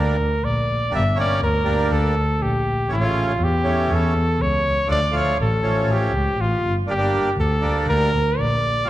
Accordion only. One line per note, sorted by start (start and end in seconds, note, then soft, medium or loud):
0.00 0.17 G3 medium
0.00 0.17 A#3 soft
0.00 0.16 D4 medium
0.91 1.04 G3 medium
0.91 1.03 A#3 medium
0.91 1.03 D4 medium
1.15 1.41 G3 medium
1.15 1.41 A#3 medium
1.15 1.41 C#4 medium
1.64 2.15 G3 medium
1.64 2.15 A#3 medium
1.64 2.15 D4 medium
2.89 2.96 A3 medium
2.89 2.96 C#4 medium
3.00 3.32 C#3 medium
3.00 3.32 A3 medium
3.00 3.32 C#4 medium
3.64 4.14 E3 medium
3.64 4.14 A3 medium
3.64 4.14 C#4 medium
4.87 5.00 F3 medium
4.87 5.00 A3 medium
4.87 5.00 D4 medium
5.11 5.38 F3 medium
5.11 5.37 A3 medium
5.11 5.37 F4 medium
5.63 6.12 F3 medium
5.63 6.13 A3 medium
5.63 6.13 C#4 medium
6.87 6.93 A#3 medium
6.87 6.93 D4 medium
6.97 7.30 G3 medium
6.97 7.30 A#3 medium
6.97 7.30 D4 medium
7.61 8.11 G3 medium
7.61 8.11 A#3 medium
7.61 8.11 D4 medium
8.85 8.90 G3 medium
8.85 8.90 A#3 medium
8.85 8.90 F4 medium